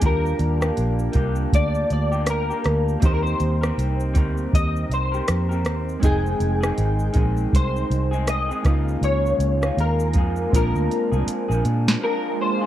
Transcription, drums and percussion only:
0.02 kick medium
0.02 closed hi-hat medium
0.02 shaker medium
0.26 shaker soft
0.39 closed hi-hat medium
0.39 shaker medium
0.62 cross-stick medium
0.62 shaker medium
0.77 closed hi-hat medium
0.77 shaker medium
0.99 shaker medium
1.13 kick medium
1.13 closed hi-hat soft
1.13 shaker soft
1.36 shaker medium
1.53 kick medium
1.53 closed hi-hat medium
1.53 shaker medium
1.75 shaker soft
1.90 closed hi-hat medium
1.90 shaker soft
2.12 shaker soft
2.26 cross-stick medium
2.26 closed hi-hat medium
2.26 shaker medium
2.51 shaker soft
2.64 cross-stick medium
2.64 closed hi-hat soft
2.64 shaker soft
2.89 shaker soft
3.02 kick loud
3.02 closed hi-hat medium
3.02 shaker medium
3.27 shaker soft
3.40 closed hi-hat medium
3.40 shaker medium
3.63 cross-stick medium
3.63 shaker soft
3.79 closed hi-hat medium
3.79 shaker medium
4.00 shaker medium
4.15 kick medium
4.15 closed hi-hat soft
4.15 shaker soft
4.38 shaker soft
4.53 kick medium
4.53 closed hi-hat medium
4.53 shaker medium
4.76 shaker soft
4.91 closed hi-hat medium
4.91 shaker soft
5.14 shaker soft
5.28 cross-stick loud
5.28 closed hi-hat medium
5.28 shaker medium
5.52 shaker medium
5.65 cross-stick medium
5.65 closed hi-hat soft
5.65 shaker soft
5.89 shaker soft
6.03 kick loud
6.03 closed hi-hat medium
6.03 shaker medium
6.26 shaker soft
6.40 closed hi-hat medium
6.40 shaker medium
6.63 cross-stick medium
6.63 shaker medium
6.78 closed hi-hat medium
6.78 shaker medium
6.99 shaker medium
7.14 kick medium
7.14 closed hi-hat soft
7.14 shaker soft
7.37 shaker soft
7.53 kick medium
7.53 closed hi-hat medium
7.53 shaker medium
7.76 shaker soft
7.91 closed hi-hat medium
7.91 shaker soft
8.13 shaker soft
8.27 cross-stick medium
8.27 closed hi-hat medium
8.27 shaker medium
8.51 shaker medium
8.65 kick medium
8.65 cross-stick medium
8.65 closed hi-hat soft
8.65 shaker soft
8.88 shaker soft
9.03 closed hi-hat medium
9.03 shaker medium
9.26 shaker soft
9.40 closed hi-hat medium
9.40 shaker medium
9.62 cross-stick medium
9.62 shaker medium
9.78 closed hi-hat medium
9.78 shaker medium
10.00 shaker medium
10.13 kick medium
10.13 closed hi-hat soft
10.13 shaker soft
10.36 shaker medium
10.53 kick medium
10.53 closed hi-hat medium
10.53 shaker medium
10.75 shaker soft
10.91 closed hi-hat soft
10.91 shaker soft
11.13 shaker soft
11.28 closed hi-hat medium
11.28 shaker medium
11.51 shaker medium
11.65 closed hi-hat soft
11.65 shaker soft
11.88 snare medium
11.88 shaker medium

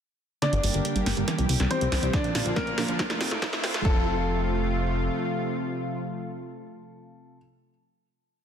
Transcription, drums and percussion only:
0.42 snare soft
0.42 closed hi-hat medium
0.53 closed hi-hat medium
0.64 open hi-hat loud
0.74 closed hi-hat medium
0.85 closed hi-hat medium
0.96 closed hi-hat medium
1.06 snare medium
1.06 open hi-hat medium
1.17 closed hi-hat medium
1.28 snare medium
1.28 closed hi-hat medium
1.39 closed hi-hat medium
1.49 open hi-hat loud
1.60 snare medium
1.60 closed hi-hat soft
1.71 closed hi-hat medium
1.81 closed hi-hat medium
1.92 snare medium
1.92 open hi-hat medium
2.03 closed hi-hat medium
2.13 kick loud
2.13 snare medium
2.13 closed hi-hat medium
2.24 closed hi-hat medium
2.35 snare medium
2.35 open hi-hat loud
2.46 closed hi-hat medium
2.56 kick loud
2.56 snare medium
2.56 closed hi-hat medium
2.67 closed hi-hat medium
2.78 snare medium
2.78 open hi-hat loud
2.88 closed hi-hat medium
2.99 kick loud
2.99 snare medium
2.99 closed hi-hat medium
3.10 snare medium
3.10 closed hi-hat medium
3.21 snare loud
3.21 open hi-hat loud
3.31 snare medium
3.42 kick loud
3.42 snare loud
3.42 closed hi-hat medium
3.53 snare medium
3.53 closed hi-hat medium
3.64 snare loud
3.64 open hi-hat loud
3.74 snare medium
3.74 closed hi-hat medium
3.85 kick loud

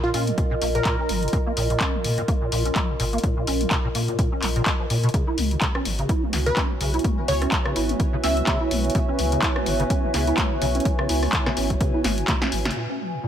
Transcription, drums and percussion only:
0.14 open hi-hat loud
0.27 closed hi-hat medium
0.38 kick loud
0.38 closed hi-hat medium
0.62 open hi-hat loud
0.75 closed hi-hat medium
0.85 kick loud
0.85 clap loud
0.85 closed hi-hat medium
1.09 open hi-hat loud
1.23 closed hi-hat soft
1.28 closed hi-hat medium
1.33 kick loud
1.33 closed hi-hat medium
1.57 open hi-hat loud
1.70 closed hi-hat medium
1.80 kick loud
1.80 clap loud
1.80 closed hi-hat medium
2.04 open hi-hat loud
2.18 closed hi-hat medium
2.28 kick loud
2.28 closed hi-hat medium
2.52 open hi-hat loud
2.65 closed hi-hat medium
2.76 kick loud
2.76 clap loud
2.76 closed hi-hat medium
3.00 open hi-hat loud
3.13 closed hi-hat soft
3.18 closed hi-hat medium
3.23 kick loud
3.23 closed hi-hat medium
3.47 open hi-hat loud
3.61 closed hi-hat medium
3.71 kick loud
3.71 clap loud
3.71 closed hi-hat medium
3.95 open hi-hat loud
4.08 closed hi-hat soft
4.19 kick loud
4.19 closed hi-hat medium
4.42 clap medium
4.42 open hi-hat loud
4.56 closed hi-hat soft
4.66 kick loud
4.66 clap loud
4.66 closed hi-hat medium
4.90 open hi-hat loud
5.04 closed hi-hat soft
5.09 closed hi-hat medium
5.14 kick loud
5.14 closed hi-hat medium
5.38 open hi-hat loud
5.51 closed hi-hat medium
5.61 kick loud
5.61 clap loud
5.61 closed hi-hat medium
5.75 cross-stick medium
5.85 open hi-hat loud
5.99 closed hi-hat soft
6.09 kick loud
6.09 closed hi-hat medium
6.33 snare soft
6.33 open hi-hat loud
6.46 closed hi-hat medium
6.57 kick loud
6.57 snare medium
6.57 clap loud
6.57 closed hi-hat medium
6.81 open hi-hat loud
6.94 closed hi-hat soft
6.99 closed hi-hat medium
7.04 kick loud
7.04 closed hi-hat medium
7.28 open hi-hat loud
7.42 cross-stick medium
7.42 closed hi-hat medium
7.52 kick loud
7.52 clap loud
7.52 closed hi-hat medium
7.65 cross-stick medium
7.76 open hi-hat loud
7.89 closed hi-hat medium
8.00 kick loud
8.00 closed hi-hat medium
8.24 snare soft
8.24 open hi-hat loud
8.37 closed hi-hat medium
8.47 kick loud
8.47 snare medium
8.47 clap loud
8.47 closed hi-hat medium
8.71 open hi-hat loud
8.85 closed hi-hat soft
8.90 closed hi-hat medium
8.95 kick loud
8.95 closed hi-hat medium
9.19 open hi-hat loud
9.32 closed hi-hat medium
9.42 kick loud
9.42 clap loud
9.42 closed hi-hat medium
9.56 cross-stick medium
9.66 open hi-hat loud
9.80 closed hi-hat medium
9.90 kick loud
9.90 closed hi-hat medium
10.14 snare soft
10.14 open hi-hat loud
10.27 closed hi-hat medium
10.38 kick loud
10.38 snare medium
10.38 clap loud
10.38 closed hi-hat medium
10.62 open hi-hat loud
10.75 closed hi-hat medium
10.80 closed hi-hat medium
10.85 kick loud
10.85 closed hi-hat medium
10.99 cross-stick medium
11.09 open hi-hat loud
11.23 cross-stick medium
11.23 open hi-hat medium
11.33 kick loud
11.33 clap loud
11.33 closed hi-hat medium
11.46 cross-stick medium
11.46 snare medium
11.57 open hi-hat loud
11.70 kick medium
11.70 closed hi-hat medium
11.81 kick loud
11.81 closed hi-hat medium
12.04 snare medium
12.04 open hi-hat loud
12.18 closed hi-hat medium
12.28 kick loud
12.28 snare medium
12.28 clap loud
12.28 closed hi-hat medium
12.42 snare medium
12.52 open hi-hat loud
12.65 snare medium
12.65 closed hi-hat medium
12.71 closed hi-hat medium

